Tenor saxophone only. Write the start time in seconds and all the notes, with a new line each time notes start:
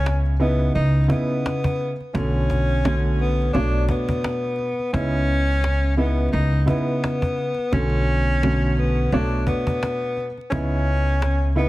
Already playing: C#4
0.41 B3
0.75 D#4
1.09 B3
2.14 C#4
3.20 B3
3.53 D4
3.90 B3
4.93 C#4
5.97 B3
6.32 D#4
6.68 B3
7.74 C#4
8.78 B3
9.13 D4
9.47 B3
10.50 C#4
11.57 B3